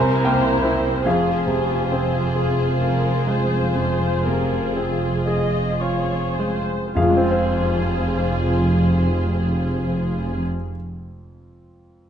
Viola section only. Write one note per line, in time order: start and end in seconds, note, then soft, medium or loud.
0.00 1.04 C5 medium
1.04 2.26 G#4 soft
2.36 2.78 G#4 soft
2.82 3.27 A#4 soft
3.28 3.75 C5 soft
3.76 4.24 C5 soft
4.25 4.75 A#4 soft
4.75 5.26 G#4 soft
5.27 5.79 D#5 soft
5.80 6.37 C#5 soft
6.38 6.96 C5 soft
6.97 10.42 F4 medium